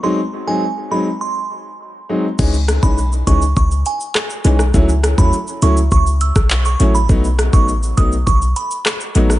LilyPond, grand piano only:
\new Staff \with { instrumentName = "Grand piano" } { \time 4/4 \key cis \minor \tempo 4 = 102 <fis gis bis dis'>16 r8 <fis gis bis dis'>16 r8 <fis gis bis dis'>16 r4. r16 <fis gis bis dis'>16 r16 | <e gis cis' dis'>16 r8 <e gis cis' dis'>16 r8 <e gis cis' dis'>16 r4. r16 <e gis cis' dis'>16 r16 | <fis a cis' e'>16 r8 <fis a cis' e'>16 r8 <fis a cis' e'>16 r4. r16 <fis a cis' e'>16 r16 | <fis a b dis'>16 r8 <fis a b dis'>16 r8 <fis a b dis'>16 r4. r16 <fis a b dis'>16 r16 | }